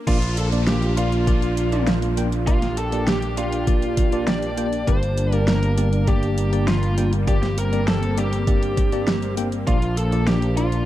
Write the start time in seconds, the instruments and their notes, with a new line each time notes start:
0.07 picked electric bass A#1, analog synth pad A#3 D4 F4, tine electric piano A#3 D4 F4 D5, lead electric guitar F4, kick, closed hi-hat, crash, downlifter
0.22 closed hi-hat
0.37 lead electric guitar A4, closed hi-hat
0.52 tine electric piano A#3 D4 F4 D5, closed hi-hat
0.67 lead electric guitar G4, snare, closed hi-hat
0.82 closed hi-hat
0.97 tine electric piano A#3 D4 F4 D5, lead electric guitar F4, closed hi-hat
1.12 closed hi-hat
1.27 tine electric piano A#3 D4 F4 D5, kick, closed hi-hat
1.42 closed hi-hat
1.57 closed hi-hat
1.72 tine electric piano A#3 D4 F4 D5, closed hi-hat
1.87 snare, closed hi-hat
2.02 closed hi-hat
2.17 tine electric piano A#3 D4 F4 G5, closed hi-hat
2.32 closed hi-hat
2.47 tine electric piano A#3 D4 F4 D5, lead electric guitar F4, analog synth pad G4, kick, closed hi-hat
2.62 snare, closed hi-hat
2.77 lead electric guitar A4, closed hi-hat
2.92 tine electric piano A#3 D4 F4 D5, closed hi-hat
3.07 lead electric guitar G4, snare, closed hi-hat
3.22 closed hi-hat
3.37 tine electric piano A#3 D4 F4 D5, lead electric guitar F4, closed hi-hat
3.52 closed hi-hat
3.67 tine electric piano A#3 D4 F4 D5, kick, closed hi-hat
3.82 closed hi-hat
3.97 kick, closed hi-hat
4.12 tine electric piano A#3 D4 F4 D5, closed hi-hat
4.27 lead electric guitar D5, snare, closed hi-hat
4.42 closed hi-hat
4.58 tine electric piano A#3 D4 F4 G5, closed hi-hat
4.73 closed hi-hat
4.87 picked electric bass G1, analog synth pad G3, tine electric piano A#3 D4 G4 D5, lead electric guitar C5, kick, closed hi-hat
5.03 closed hi-hat
5.18 closed hi-hat
5.32 tine electric piano A#3 D4 G4 D5, lead electric guitar A#4, closed hi-hat
5.48 lead electric guitar A#4, snare, closed hi-hat
5.63 closed hi-hat
5.78 tine electric piano A#3 D4 G4 D5, closed hi-hat
5.93 closed hi-hat
6.07 tine electric piano A#3 D4 G4 D5, lead electric guitar G4, kick, closed hi-hat
6.23 closed hi-hat
6.38 closed hi-hat
6.53 tine electric piano A#3 D4 G4 D5, closed hi-hat
6.68 lead electric guitar F4, snare, closed hi-hat
6.83 closed hi-hat
6.98 tine electric piano A#3 D4 G4 G5, closed hi-hat
7.13 closed hi-hat
7.27 tine electric piano A#3 D4 G4 D5, analog synth pad C4, lead electric guitar G4, kick, closed hi-hat
7.43 snare, closed hi-hat
7.58 lead electric guitar A#4, closed hi-hat
7.73 tine electric piano A#3 D4 G4 D5, closed hi-hat
7.88 lead electric guitar A4, snare, closed hi-hat
8.03 closed hi-hat
8.18 tine electric piano A#3 D4 G4 D5, lead electric guitar G4, closed hi-hat
8.33 closed hi-hat
8.47 tine electric piano A#3 D4 G4 D5, kick, closed hi-hat
8.63 closed hi-hat
8.77 kick, closed hi-hat
8.92 tine electric piano A#3 D4 G4 D5, closed hi-hat
9.07 snare, closed hi-hat
9.22 closed hi-hat
9.37 tine electric piano A#3 D4 G4 G5, closed hi-hat
9.52 closed hi-hat
9.67 picked electric bass A#1, analog synth pad F3 D4, tine electric piano A#3 D4 F4 D5, lead electric guitar F4, kick, closed hi-hat
9.82 closed hi-hat
9.97 lead electric guitar A4, closed hi-hat
10.12 tine electric piano A#3 D4 F4 D5, closed hi-hat
10.27 lead electric guitar G4, snare, closed hi-hat
10.42 closed hi-hat
10.57 tine electric piano A#3 D4 F4 D5, lead electric guitar F4, closed hi-hat
10.72 closed hi-hat